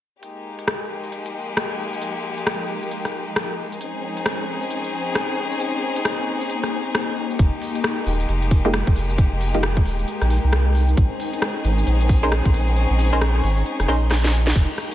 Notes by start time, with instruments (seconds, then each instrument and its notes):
0.23 ambient pad F3, violin section G#3 A#3 D#4 G4, closed hi-hat
0.32 ambient pad D#4
0.52 ambient pad G#3
0.59 ambient pad A#4 G5, closed hi-hat
0.68 cross-stick, closed hi-hat
1.04 closed hi-hat
1.12 closed hi-hat
1.26 closed hi-hat
1.57 cross-stick, closed hi-hat
1.93 closed hi-hat
2.02 closed hi-hat
2.38 closed hi-hat
2.47 cross-stick, closed hi-hat
2.83 closed hi-hat
2.91 closed hi-hat
3.05 cross-stick, closed hi-hat
3.36 cross-stick, closed hi-hat
3.72 closed hi-hat
3.81 ambient pad A#3, violin section C4 C#4 G#4, closed hi-hat
3.89 ambient pad C#6
3.94 ambient pad G#5
4.17 closed hi-hat
4.26 cross-stick, closed hi-hat
4.62 closed hi-hat
4.71 closed hi-hat
4.84 closed hi-hat
5.15 cross-stick, closed hi-hat
5.52 closed hi-hat
5.60 closed hi-hat
5.96 closed hi-hat
6.05 cross-stick, closed hi-hat
6.41 closed hi-hat
6.50 closed hi-hat
6.63 cross-stick, closed hi-hat
6.95 cross-stick, closed hi-hat
7.31 closed hi-hat
7.39 sub bass F1, violin section G#3 A#3 G4, kick, closed hi-hat
7.62 open hi-hat
7.70 ambient pad G#3
7.75 ambient pad A#4, closed hi-hat
7.80 ambient pad G5, cross-stick, closed hi-hat
8.06 sub bass D#1, open hi-hat
8.20 closed hi-hat
8.29 sub bass F1, closed hi-hat
8.42 closed hi-hat
8.51 kick, open hi-hat
8.65 synth stab G#3 A#3 D#4 F4 G4
8.74 cross-stick, closed hi-hat
8.87 sub bass F1, kick
8.96 sub bass F1, open hi-hat
9.10 closed hi-hat
9.18 kick, closed hi-hat
9.32 sub bass F1
9.41 open hi-hat
9.54 synth stab G#3 A#3 D#4 F4 G4, closed hi-hat
9.63 cross-stick, closed hi-hat
9.77 kick
9.85 sub bass D#1, open hi-hat
9.99 closed hi-hat
10.08 closed hi-hat
10.21 sub bass A#1, cross-stick, closed hi-hat
10.30 open hi-hat
10.44 sub bass C2
10.53 cross-stick, closed hi-hat
10.75 open hi-hat
10.89 closed hi-hat
10.97 sub bass A#1, violin section C4 C#4 D#4 G#4, kick, closed hi-hat
11.07 ambient pad C#6
11.20 open hi-hat
11.33 closed hi-hat
11.42 cross-stick, closed hi-hat
11.49 ambient pad G#5
11.64 sub bass G#1, open hi-hat
11.78 closed hi-hat
11.87 sub bass A#1, closed hi-hat
12.01 closed hi-hat
12.09 kick, open hi-hat
12.23 synth stab C#4 D#4 G#4 A#4 C5
12.32 cross-stick, closed hi-hat
12.45 sub bass A#1, kick
12.54 sub bass A#1, open hi-hat
12.68 closed hi-hat
12.77 closed hi-hat
12.90 sub bass A#1
12.99 open hi-hat
13.13 synth stab C#4 D#4 G#4 A#4 C5, closed hi-hat
13.21 cross-stick, closed hi-hat
13.44 sub bass G#1, open hi-hat
13.57 closed hi-hat
13.66 closed hi-hat
13.80 sub bass F1, cross-stick, closed hi-hat
13.88 sub bass A#1, synth stab C#4 D#4 G#4 A#4 C5, open hi-hat
14.11 cross-stick, snare, closed hi-hat
14.24 snare
14.33 open hi-hat
14.47 snare
14.55 sub bass F1, violin section G#3 A#3 D#4 G4, kick, closed hi-hat, crash
14.78 cross-stick, open hi-hat
14.92 closed hi-hat